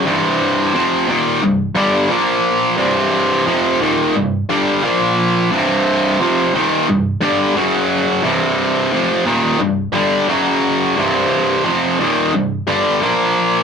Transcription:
\new Staff \with { instrumentName = "Distorted electric guitar" } { \clef bass \time 4/4 \key c \minor \tempo 4 = 88 <c, g, c>4 <f, c f>8 <ees, bes, ees>8 <c, g,>8 <g, d g>8 <bes, f bes>4 | <c, g, c>4 <f, c f>8 <ees, bes, ees>8 <c, g,>8 <g, d g>8 <bes, f bes>4 | <c, g, c>4 <f, c f>8 <ees, bes, ees>8 <c, g,>8 <g, d g>8 <fis, cis fis>4 | <c, g, c>4 <f, c f>8 <ees, bes, ees>8 <c, g,>8 <g, d g>8 <fis, cis fis>4 |
<c, g, c>4 <f, c f>8 <ees, bes, ees>8 <c, g,>8 <g, d g>8 <bes, f bes>4 | }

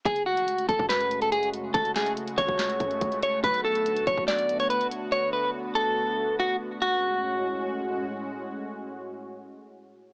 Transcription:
<<
  \new Staff \with { instrumentName = "Clean electric guitar" } { \time 4/4 \key fis \minor \tempo 4 = 142 gis'8 fis'4 a'8 b'8. a'16 gis'8 r8 | a'8 gis'8 r8 cis''2 cis''8 | b'8 a'4 cis''8 d''8. cis''16 b'8 r8 | cis''8 b'8 r8 a'4. fis'8 r8 |
fis'2. r4 | r1 | }
  \new Staff \with { instrumentName = "Analog synth pad" } { \time 4/4 \key fis \minor <cis gis a fis'>1~ | <cis gis a fis'>1 | <d b fis'>1~ | <d b fis'>1 |
<a, gis cis' fis'>1~ | <a, gis cis' fis'>1 | }
  \new Staff \with { instrumentName = "808-style bass" } { \clef bass \time 4/4 \key fis \minor fis,,8. a,,16 r8 fis,,16 fis,2~ fis,16 | fis,,4. cis,16 cis,8. fis,8 cis,8 r8 | b,,4. b,,16 b,,4~ b,,16 r4 | r1 |
r1 | r1 | }
  \new DrumStaff \with { instrumentName = "Drums" } \drummode { \time 4/4 <hh bd>16 hh8 hh16 hh16 hh16 <hh bd>16 bd16 <hc hh sn>16 hh16 hh16 hh16 hh16 hh16 hh8 | <hh bd>16 hh16 <hc sn>16 hh16 hh16 hh16 <hh bd>16 bd16 <hc hh sn>16 hh16 <hh bd>16 hh16 <hh bd>16 hh16 hh8 | <hh bd>16 hh8 hh16 hh16 hh16 <hh bd>16 bd16 <hc hh sn>16 hh16 hh16 hh16 hh16 hh16 hh8 | r4 r4 r4 r4 |
r4 r4 r4 r4 | r4 r4 r4 r4 | }
>>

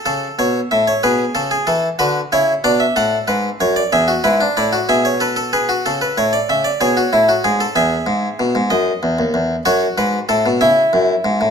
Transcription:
<<
  \new Staff \with { instrumentName = "Harpsichord" } { \time 12/8 \key a \major \tempo 4. = 63 << { a'8 cis''8 e''16 cis''16 b'8 a'16 gis'16 a'8 b'8 cis''8 d''16 e''16 fis''8 b'8 cis''16 d''16 | e''8 b'8 d''8 e''16 cis''16 b'16 a'16 gis'16 fis'16 a'16 b'16 cis''16 d''16 e''16 d''16 cis''4. | e''4. dis''4. cis''8 b'8 a'8 e''4. | } \\ { r4. gis'4. fis'8 e'8 d'8 a'4. | gis'16 fis'16 e'16 d'16 e'16 fis'16 gis'8 a'8 b'8 r4. gis'16 fis'16 e'16 fis'16 gis'16 a'16 | gis'2. fis'4. e'4. | } >> }
  \new Staff \with { instrumentName = "Harpsichord" } { \clef bass \time 12/8 \key a \major cis8 b,8 a,8 b,8 cis8 e8 d8 cis8 b,8 a,8 gis,8 fis,8 | e,8 gis,8 a,8 b,4. cis8 a,8 cis8 b,8 a,8 gis,8 | e,8 gis,8 b,16 gis,16 fis,8 e,16 dis,16 e,8 fis,8 gis,8 a,16 b,16 cis8 fis,8 gis,16 a,16 | }
>>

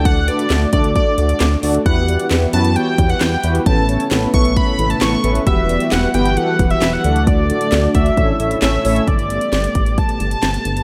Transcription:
<<
  \new Staff \with { instrumentName = "Analog synth lead" } { \time 4/4 \key e \dorian \tempo 4 = 133 fis''8 d''4 d''8 d''8 d''4 r8 | fis''4 r8 a''8 g''8. fis''16 g''8. r16 | a''4 r8 cis'''8 b''8. a''16 cis'''8. r16 | e''4 fis''8 g''8 fis''8. e''8 fis''8. |
d''4. e''4. e''8 e''8 | d''2 a''2 | }
  \new Staff \with { instrumentName = "Analog polysynth" } { \time 4/4 \key e \dorian <a d' fis' a' d''>8 <a d' fis' a' b'>8 <a d' fis' a' d''>8 <a d' fis' a' d''>8 <a d' fis' a' d''>8 <a d' fis' a' d''>8 <a d' fis' a' d''>8 <a d' fis' a' d''>8 | <b e' fis' g' b'>8 <b e' fis' g' d''>8 <b e' fis' g' b'>8 <b e' fis' g' b'>8 <b e' fis' g' cis''>8 <b e' fis' g' b'>8 <b e' fis' g' b'>8 <b e' fis' g' b'>8 | <b cis' e' a' b'>8 <b cis' e' a' cis''>8 <b cis' e' a' b'>8 <b cis' e' a' b'>8 <b cis' e' a' b'>8 <b cis' e' a' b'>8 <b cis' e' a' b'>8 <b cis' e' a' b'>8 | <b e' fis' g' b'>8 <b e' fis' g' d''>8 <b e' fis' g' b'>8 <b e' fis' g' b'>8 <b e' fis' g' a'>8 <b e' fis' g' b'>8 <b e' fis' g' b'>8 <a d' fis' a' d''>8~ |
<a d' fis' a' d''>8 <a d' fis' a' d''>8 <a d' fis' a' d''>8 <a d' fis' a' d''>8 <a cis' e' a' cis''>8 <a cis' e' a' cis''>8 <a cis' e' a' cis''>8 <a cis' e' a' cis''>8 | r1 | }
  \new Staff \with { instrumentName = "String machine" } { \time 4/4 \key e \dorian << { d'1 | <e e' g' b'>1 | <b cis'>1 | <e e' g' b'>2.~ <e e' g' b'>8 d'8~ |
d'2 <cis' e'>2 | <b g'>1 | } \\ { a1 | r1 | a1 | fis'2.~ fis'8 a8~ |
a1 | a1 | } >> }
  \new Staff \with { instrumentName = "Analog synth bass" } { \clef bass \time 4/4 \key e \dorian d,4 d,8 d,8. r16 d,8 d,8 d,8 | e,4 e,8 fis,8. r16 e,8 e,8 e,8 | a,,4 a,,8 b,,8. r16 a,,8 a,,8 a,,8 | e,,4 e,,8 g,,8. r16 e,,8 e,,8 d,8~ |
d,4 d,8 d,8 a,,8 a,,8 a,,8 a,,8 | g,,4 g,,8 a,,8. r16 g,,8 g,,8 g,,8 | }
  \new DrumStaff \with { instrumentName = "Drums" } \drummode { \time 4/4 <hh bd>8 hh16 hh16 <hc hh sn>8 <hh bd>16 hh16 <hh bd>8 hh16 hh16 <hc hh sn>8 hho16 hh16 | <hh bd>8 hh16 hh16 <hc hh sn>8 hh16 hh16 hh8 <hh bd>16 hh16 <hc hh sn>8 hh16 hh16 | <hh bd>8 hh16 hh16 <hc hh sn>8 <hh bd>16 hh16 <hh bd>8 hh16 hh16 <hc hh sn>8 hh16 hh16 | <hh bd>8 hh16 hh16 <hc hh sn>8 hh16 hh16 hh8 <hh bd>16 hh16 <hc hh sn>8 hh16 hh16 |
<hh bd>8 hh16 hh16 <hc hh sn>8 <hh bd>16 hh16 <hh bd>8 hh16 hh16 <hc hh sn>8 hho16 hh16 | <hh bd>16 hh16 hh16 hh16 <hh sn>16 hh16 <hh bd>16 hh16 <hh bd>16 hh16 hh16 hh16 <hh sn>16 hh16 hh16 hh16 | }
>>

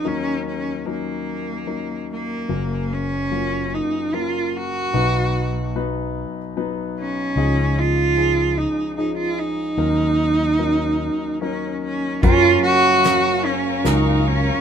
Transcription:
<<
  \new Staff \with { instrumentName = "String section" } { \time 3/4 \key fis \major \tempo 4 = 74 r2. | r2. | r2. | r2. |
r2. | <ais' eis'' ais'' cis'''>2. | }
  \new Staff \with { instrumentName = "Cello" } { \time 3/4 \key fis \major cis'8 cis'8 ais4. ais8~ | ais8 cis'4 dis'8 eis'8 fis'8~ | fis'4 r4. cis'8~ | cis'8 eis'4 dis'8 dis'16 eis'16 dis'8~ |
dis'2 cis'8 cis'8 | eis'8 fis'4 cis'8 dis'8 cis'8 | }
  \new Staff \with { instrumentName = "Grand piano" } { \time 3/4 \key fis \major <fis cis' dis' ais'>8. r16 <fis cis' dis' ais'>8. r16 <fis cis' dis' ais'>8. r16 | <fis ais cis' ais'>8. r16 <fis ais cis' eis'>8. r16 <fis ais cis' ais'>8. r16 | <fis b dis' b'>8. r16 <fis b dis' b'>8. r16 <fis b dis' b'>8. r16 | <eis cis' dis' gis'>8. r16 <eis cis' dis' gis'>8. r16 <eis cis' dis' gis'>8. r16 |
<fis cis' dis' ais'>8. r16 <fis cis' dis' ais'>8. r16 <fis cis' dis' ais'>8. r16 | <fis cis' eis' ais'>8. r16 <fis cis' ais' eis''>8. r16 <fis cis' eis' ais'>8. r16 | }
  \new Staff \with { instrumentName = "Grand piano" } { \clef bass \time 3/4 \key fis \major <dis, dis>2. | <fis,, fis,>2. | <b,, b,>2. | <cis, cis>2. |
<dis, dis>2. | <fis,, fis,>2. | }
  \new Staff \with { instrumentName = "Pedal steel guitar" } { \time 3/4 \key fis \major r2. | r2. | r2. | r2. |
r2. | cis'2. | }
  \new Staff \with { instrumentName = "Fretless electric bass" } { \clef bass \time 3/4 \key fis \major r2. | fis,,2 r4 | b,,2 r4 | cis,2 r4 |
dis,2 r4 | fis,8 r4. cis,4 | }
  \new DrumStaff \with { instrumentName = "Drums" } \drummode { \time 3/4 r4 r4 r4 | r4 r4 r4 | r4 r4 r4 | r4 r4 r4 |
r4 r4 r4 | <hh bd>4 <hh sn>4 <hh sn>4 | }
>>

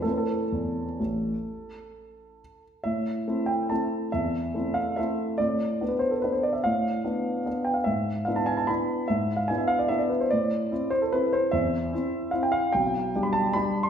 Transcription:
\new Staff \with { instrumentName = "Grand piano" } { \time 3/4 \key a \minor \tempo 4 = 145 << { \tuplet 3/2 { a'16 b'16 a'4~ } a'2~ | a'2~ a'8 r8 | e''4. g''8 a''4 | e''4. f''8 e''4 |
d''4~ d''16 b'16 c''16 a'16 b'16 c''16 d''16 e''16 | f''2~ f''8 g''16 f''16 | e''4 f''16 a''16 gis''16 a''16 b''4 | e''8. f''16 gis''16 e''16 f''16 d''16 e''16 d''16 b'16 c''16 |
d''4. c''16 a'16 b'8 c''8 | e''2 f''16 g''16 f''8 | g''4~ g''16 b''16 a''8 b''8. c'''16 | } \\ { <a, c' e'>4 e,4 a,,4 | r2. | a,4 <a c' e'>4 <a c' e'>4 | e,4 <a c' e'>4 <a c' e'>4 |
a,4 <b d'>4 <b d'>4 | a,4 <b d'>4 <b d'>4 | gis,4 <b d' e'>4 <b d' e'>4 | gis,4 <b d' e'>4 <b d' e'>4 |
a,4 <c' e'>4 <c' e'>4 | e,4 <c' e'>4 <c' e'>4 | b,,4 <g d' g'>4 <g d' g'>4 | } >> }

